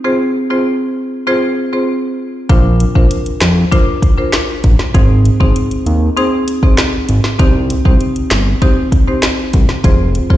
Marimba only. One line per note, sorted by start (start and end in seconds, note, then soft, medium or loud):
0.04 0.19 C4 medium
0.04 0.19 F4 medium
0.04 0.19 G#4 medium
0.04 0.19 C5 loud
0.50 0.64 C4 medium
0.50 0.65 F4 medium
0.50 0.65 G#4 medium
0.50 0.65 C5 medium
1.27 1.69 C4 medium
1.27 1.69 F4 medium
1.27 1.69 G#4 medium
1.27 1.70 C5 loud
1.73 1.87 C4 medium
1.73 1.87 F4 medium
1.73 1.87 G#4 medium
1.73 1.87 C5 medium
2.49 2.64 D4 medium
2.49 2.64 F4 medium
2.49 2.64 A#4 medium
2.49 2.64 C5 loud
2.95 3.09 D4 medium
2.95 3.10 F4 medium
2.95 3.10 A#4 medium
2.95 3.10 C5 medium
3.72 4.14 D4 medium
3.72 4.14 F4 medium
3.72 4.14 A#4 medium
3.72 4.14 C5 loud
4.18 4.32 D4 medium
4.18 4.32 F4 medium
4.18 4.32 A#4 medium
4.18 4.32 C5 medium
4.94 5.08 C4 medium
4.94 5.09 D#4 medium
4.94 5.09 G#4 medium
4.94 5.09 C5 medium
5.40 5.54 C4 medium
5.40 5.54 D#4 medium
5.40 5.54 G#4 medium
5.40 5.55 C5 medium
6.17 6.59 C4 loud
6.17 6.59 D#4 medium
6.17 6.59 G#4 medium
6.17 6.59 C5 loud
6.63 6.77 C4 medium
6.63 6.77 D#4 medium
6.63 6.77 G#4 medium
6.63 6.77 C5 medium
7.39 7.53 C4 medium
7.39 7.53 D#4 medium
7.39 7.54 G4 medium
7.39 7.54 C5 loud
7.85 7.99 C4 medium
7.85 7.99 D#4 medium
7.85 7.99 G4 medium
7.85 8.00 C5 medium
8.62 9.04 C4 medium
8.62 9.04 D#4 medium
8.62 9.04 G4 medium
8.62 9.04 C5 loud
9.07 9.22 C4 medium
9.07 9.22 D#4 medium
9.07 9.22 G4 medium
9.07 9.22 C5 medium
9.84 9.98 C4 medium
9.84 9.98 F4 medium
9.84 9.98 G#4 medium
9.84 9.99 C5 medium
10.30 10.37 C4 medium
10.30 10.37 F4 medium
10.30 10.37 G#4 medium
10.30 10.37 C5 medium